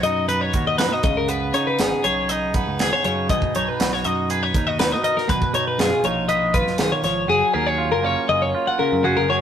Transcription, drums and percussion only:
0.03 closed hi-hat medium
0.29 closed hi-hat medium
0.53 kick medium
0.53 closed hi-hat medium
0.79 snare loud
0.79 closed hi-hat medium
1.03 kick loud
1.03 closed hi-hat medium
1.28 closed hi-hat medium
1.54 closed hi-hat medium
1.79 snare medium
1.79 closed hi-hat medium
2.04 closed hi-hat medium
2.29 closed hi-hat medium
2.54 kick medium
2.54 closed hi-hat medium
2.79 snare loud
2.79 closed hi-hat medium
3.04 closed hi-hat medium
3.29 kick loud
3.29 closed hi-hat medium
3.42 kick medium
3.55 closed hi-hat medium
3.80 snare medium
3.80 closed hi-hat medium
3.93 snare soft
4.04 closed hi-hat medium
4.30 closed hi-hat medium
4.54 kick medium
4.54 closed hi-hat medium
4.79 snare loud
4.79 closed hi-hat medium
5.04 closed hi-hat medium
5.18 snare soft
5.29 kick loud
5.29 closed hi-hat medium
5.42 kick medium
5.54 closed hi-hat medium
5.79 snare loud
5.79 closed hi-hat medium
6.04 closed hi-hat medium
6.29 closed hi-hat medium
6.54 kick medium
6.54 closed hi-hat medium
6.67 snare soft
6.78 snare medium
6.78 closed hi-hat medium
7.04 snare soft
7.04 closed hi-hat medium

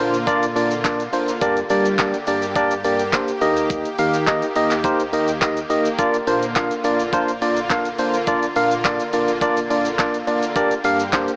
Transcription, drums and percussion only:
0.14 closed hi-hat medium
0.14 shaker medium
0.27 kick loud
0.27 closed hi-hat medium
0.27 shaker medium
0.43 closed hi-hat medium
0.43 shaker medium
0.56 open hi-hat medium
0.56 shaker medium
0.71 closed hi-hat medium
0.71 shaker medium
0.84 kick loud
0.84 clap loud
0.84 closed hi-hat medium
0.84 shaker medium
1.00 closed hi-hat medium
1.00 shaker medium
1.13 open hi-hat medium
1.13 shaker medium
1.28 closed hi-hat medium
1.28 shaker medium
1.42 kick loud
1.42 closed hi-hat medium
1.42 shaker medium
1.57 closed hi-hat soft
1.57 shaker soft
1.70 open hi-hat medium
1.70 shaker medium
1.85 closed hi-hat medium
1.85 shaker medium
1.99 kick loud
1.99 clap loud
1.99 closed hi-hat medium
1.99 shaker medium
2.14 closed hi-hat medium
2.14 shaker medium
2.27 open hi-hat medium
2.27 shaker medium
2.42 closed hi-hat medium
2.42 shaker medium
2.56 kick loud
2.56 closed hi-hat medium
2.56 shaker medium
2.71 closed hi-hat medium
2.71 shaker medium
2.85 open hi-hat medium
2.85 shaker medium
2.99 closed hi-hat medium
2.99 shaker medium
3.13 kick loud
3.13 clap loud
3.13 closed hi-hat medium
3.13 shaker medium
3.28 closed hi-hat medium
3.28 shaker medium
3.41 open hi-hat medium
3.41 shaker medium
3.57 closed hi-hat medium
3.57 shaker medium
3.70 kick loud
3.70 closed hi-hat medium
3.70 shaker medium
3.85 closed hi-hat soft
3.85 shaker soft
3.99 open hi-hat medium
3.99 shaker medium
4.14 closed hi-hat medium
4.14 shaker medium
4.27 kick loud
4.27 clap loud
4.27 closed hi-hat medium
4.27 shaker medium
4.42 closed hi-hat medium
4.42 shaker medium
4.56 open hi-hat medium
4.56 shaker medium
4.71 clap medium
4.71 closed hi-hat medium
4.71 shaker medium
4.84 kick loud
4.84 closed hi-hat medium
4.84 shaker medium
5.00 closed hi-hat medium
5.00 shaker medium
5.13 open hi-hat medium
5.13 shaker medium
5.28 closed hi-hat medium
5.28 shaker medium
5.42 kick loud
5.42 clap loud
5.42 closed hi-hat medium
5.42 shaker medium
5.57 closed hi-hat medium
5.57 shaker medium
5.70 open hi-hat medium
5.70 shaker soft
5.85 closed hi-hat medium
5.85 shaker medium
5.99 kick loud
5.99 closed hi-hat medium
5.99 shaker medium
6.14 closed hi-hat soft
6.14 shaker soft
6.27 open hi-hat medium
6.27 shaker medium
6.42 closed hi-hat medium
6.42 shaker medium
6.56 kick loud
6.56 clap loud
6.56 closed hi-hat medium
6.56 shaker medium
6.71 closed hi-hat medium
6.71 shaker medium
6.84 open hi-hat medium
6.84 shaker medium
6.99 closed hi-hat medium
6.99 shaker medium
7.13 kick loud
7.13 closed hi-hat medium
7.13 shaker medium
7.28 closed hi-hat medium
7.28 shaker medium
7.42 open hi-hat medium
7.42 shaker medium
7.56 closed hi-hat medium
7.56 shaker medium
7.70 kick loud
7.70 clap loud
7.70 closed hi-hat medium
7.70 shaker medium
7.85 closed hi-hat medium
7.85 shaker medium
7.99 open hi-hat medium
7.99 shaker medium
8.14 closed hi-hat medium
8.14 shaker medium
8.27 kick loud
8.27 closed hi-hat medium
8.27 shaker medium
8.43 closed hi-hat medium
8.43 shaker soft
8.56 open hi-hat medium
8.56 shaker medium
8.71 closed hi-hat medium
8.71 shaker medium
8.84 kick loud
8.84 clap loud
8.84 closed hi-hat medium
8.84 shaker medium
9.00 closed hi-hat medium
9.00 shaker medium
9.13 open hi-hat medium
9.13 shaker medium
9.28 closed hi-hat medium
9.28 shaker medium
9.41 kick loud
9.41 closed hi-hat medium
9.41 shaker medium
9.57 closed hi-hat medium
9.57 shaker medium
9.70 open hi-hat medium
9.70 shaker medium
9.85 closed hi-hat medium
9.85 shaker medium
9.99 kick loud
9.99 clap loud
9.99 closed hi-hat medium
9.99 shaker medium
10.14 closed hi-hat medium
10.14 shaker medium
10.27 open hi-hat medium
10.27 shaker soft
10.43 closed hi-hat medium
10.43 shaker medium
10.56 kick loud
10.56 closed hi-hat medium
10.56 shaker medium
10.71 closed hi-hat soft
10.71 shaker medium
10.84 open hi-hat medium
10.84 shaker medium
11.00 closed hi-hat medium
11.00 shaker medium
11.13 kick loud
11.13 clap loud
11.13 closed hi-hat medium
11.13 shaker medium
11.28 closed hi-hat medium
11.28 shaker medium

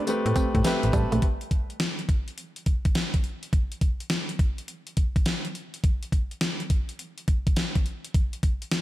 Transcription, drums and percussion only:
0.07 closed hi-hat medium
0.07 tambourine medium
0.26 closed hi-hat soft
0.36 kick medium
0.36 closed hi-hat medium
0.36 tambourine medium
0.55 kick medium
0.55 closed hi-hat medium
0.64 snare loud
0.64 closed hi-hat medium
0.64 tambourine loud
0.83 closed hi-hat medium
0.93 kick loud
0.93 closed hi-hat medium
0.93 tambourine medium
1.12 closed hi-hat medium
1.22 kick loud
1.22 closed hi-hat medium
1.41 closed hi-hat medium
1.51 kick medium
1.51 closed hi-hat medium
1.70 closed hi-hat soft
1.80 snare loud
1.80 closed hi-hat medium
1.99 closed hi-hat soft
2.09 kick loud
2.09 closed hi-hat medium
2.28 closed hi-hat soft
2.38 closed hi-hat medium
2.56 closed hi-hat soft
2.66 kick medium
2.66 closed hi-hat medium
2.85 kick medium
2.85 closed hi-hat soft
2.95 snare loud
2.95 closed hi-hat medium
3.14 kick medium
3.14 closed hi-hat medium
3.24 closed hi-hat medium
3.43 closed hi-hat soft
3.53 kick loud
3.53 closed hi-hat medium
3.72 closed hi-hat soft
3.81 kick medium
3.81 closed hi-hat medium
4.00 closed hi-hat soft
4.10 snare loud
4.10 closed hi-hat medium
4.29 closed hi-hat medium
4.39 kick loud
4.39 closed hi-hat medium
4.58 closed hi-hat soft
4.68 closed hi-hat medium
4.87 closed hi-hat soft
4.97 kick medium
4.97 closed hi-hat medium
5.16 kick medium
5.16 closed hi-hat soft
5.26 snare loud
5.26 closed hi-hat medium
5.45 closed hi-hat medium
5.55 closed hi-hat medium
5.74 closed hi-hat soft
5.84 kick loud
5.84 closed hi-hat medium
6.03 closed hi-hat medium
6.12 kick medium
6.12 closed hi-hat medium
6.31 closed hi-hat soft
6.41 snare loud
6.41 closed hi-hat medium
6.60 closed hi-hat medium
6.70 kick medium
6.70 closed hi-hat medium
6.89 closed hi-hat soft
6.99 closed hi-hat medium
7.18 closed hi-hat soft
7.28 kick medium
7.28 closed hi-hat medium
7.47 kick medium
7.47 closed hi-hat medium
7.56 snare loud
7.56 closed hi-hat medium
7.75 kick medium
7.75 closed hi-hat medium
7.86 closed hi-hat medium
8.05 closed hi-hat medium
8.14 kick loud
8.14 closed hi-hat medium
8.33 closed hi-hat medium
8.43 kick medium
8.43 closed hi-hat medium
8.62 closed hi-hat soft
8.72 snare loud
8.72 closed hi-hat medium

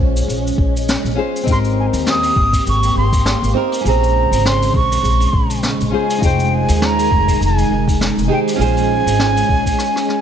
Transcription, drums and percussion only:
0.17 cabasa medium
0.30 cabasa medium
0.47 cabasa medium
0.58 kick loud
0.77 cabasa medium
0.89 snare loud
0.89 cabasa medium
1.06 cabasa soft
1.36 cabasa medium
1.47 kick loud
1.47 cabasa medium
1.65 cabasa soft
1.93 open hi-hat medium
1.93 cabasa medium
2.06 snare medium
2.06 cabasa medium
2.23 open hi-hat medium
2.23 cabasa soft
2.36 kick medium
2.53 kick medium
2.53 open hi-hat medium
2.53 cabasa medium
2.67 cabasa medium
2.83 open hi-hat medium
2.83 cabasa soft
3.12 kick medium
3.12 open hi-hat medium
3.12 cabasa medium
3.26 snare loud
3.26 cabasa medium
3.44 cabasa soft
3.72 open hi-hat medium
3.72 cabasa medium
3.86 cabasa medium
4.04 cabasa soft
4.33 open hi-hat medium
4.33 cabasa medium
4.45 snare loud
4.45 cabasa medium
4.62 open hi-hat medium
4.62 cabasa medium
4.74 kick loud
4.92 open hi-hat medium
4.92 cabasa medium
5.05 cabasa medium
5.20 open hi-hat medium
5.20 cabasa soft
5.33 kick loud
5.50 open hi-hat medium
5.50 cabasa medium
5.63 snare medium
5.63 cabasa medium
5.81 cabasa soft
6.10 open hi-hat medium
6.10 cabasa medium
6.22 kick loud
6.22 cabasa medium
6.40 cabasa soft
6.68 open hi-hat medium
6.68 cabasa medium
6.82 snare loud
6.82 cabasa medium
6.99 open hi-hat medium
6.99 cabasa medium
7.11 kick loud
7.28 kick medium
7.28 open hi-hat medium
7.28 cabasa medium
7.42 cabasa medium
7.58 open hi-hat medium
7.58 cabasa soft
7.88 kick medium
7.88 open hi-hat medium
7.88 cabasa medium
8.01 snare medium
8.01 cabasa medium
8.19 cabasa soft
8.47 open hi-hat medium
8.47 cabasa medium
8.61 cabasa medium
8.77 open hi-hat soft
8.77 cabasa soft
9.08 open hi-hat medium
9.08 cabasa medium
9.19 snare loud
9.19 cabasa medium
9.36 open hi-hat medium
9.36 cabasa medium
9.49 kick loud
9.66 kick medium
9.66 open hi-hat medium
9.66 cabasa medium
9.78 cross-stick medium
9.78 cabasa medium
9.96 cross-stick medium
9.96 open hi-hat medium
9.96 cabasa soft
10.09 cross-stick medium

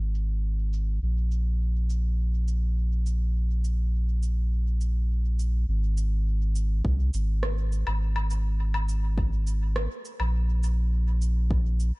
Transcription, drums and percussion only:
0.15 cabasa soft
0.73 cabasa soft
1.31 cabasa soft
1.90 cabasa soft
2.48 cabasa medium
3.06 cabasa soft
3.64 cabasa soft
4.23 cabasa soft
4.81 cabasa soft
5.39 cabasa soft
5.97 cabasa medium
6.55 cabasa medium
6.85 kick loud
7.14 cabasa medium
7.43 cross-stick medium
7.72 cabasa medium
7.87 low woodblock medium
8.16 low woodblock medium
8.30 cabasa medium
8.74 low woodblock medium
8.89 cabasa medium
9.18 kick loud
9.47 cabasa medium
9.76 cross-stick loud
10.05 cabasa medium
10.20 low woodblock medium
10.63 cabasa medium
11.22 cabasa medium
11.51 kick loud
11.80 cabasa medium

